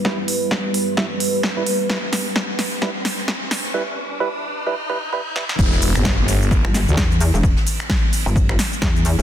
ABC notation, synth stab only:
X:1
M:4/4
L:1/16
Q:"Swing 16ths" 1/4=130
K:Em
V:1 name="Synth stab"
[G,EB] z6 z [G,Ee] z4 [G,EB] z2 | [G,EB] z6 z [G,EB] z6 z | [G,EB] z3 [G,EB] z3 [G,EB] z [G,EB] z [G,EB] z [G,EB] z | z16 |
z16 |]